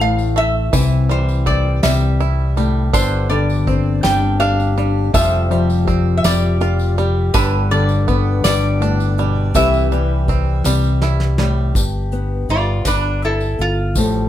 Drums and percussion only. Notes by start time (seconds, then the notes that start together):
0.00 closed hi-hat
0.18 tambourine
0.37 closed hi-hat
0.73 kick, closed hi-hat, tambourine
1.10 closed hi-hat
1.29 tambourine
1.47 kick, closed hi-hat
1.83 snare, closed hi-hat, tambourine
2.20 closed hi-hat
2.57 closed hi-hat, tambourine
2.94 kick, closed hi-hat, tambourine
3.31 closed hi-hat
3.50 tambourine
3.67 kick, closed hi-hat
4.04 snare, closed hi-hat, tambourine
4.41 closed hi-hat
4.60 tambourine
4.78 closed hi-hat
5.14 kick, closed hi-hat, tambourine
5.51 closed hi-hat
5.70 tambourine
5.87 kick, closed hi-hat
6.24 snare, closed hi-hat, tambourine
6.61 closed hi-hat
6.79 tambourine
6.98 closed hi-hat
7.34 kick, closed hi-hat, tambourine
7.71 closed hi-hat
7.89 tambourine
8.08 kick, closed hi-hat
8.44 snare, closed hi-hat, tambourine
8.81 closed hi-hat
9.00 tambourine
9.18 closed hi-hat
9.54 kick, closed hi-hat, tambourine
9.73 tambourine
9.92 closed hi-hat
10.28 kick, closed hi-hat
10.64 snare, tambourine
10.84 tambourine
11.02 snare, tambourine
11.20 snare
11.38 snare
11.75 kick, closed hi-hat, tambourine
12.12 closed hi-hat
12.49 closed hi-hat
12.85 kick, snare, closed hi-hat, tambourine
13.22 closed hi-hat
13.40 tambourine
13.59 closed hi-hat
13.95 kick, closed hi-hat, tambourine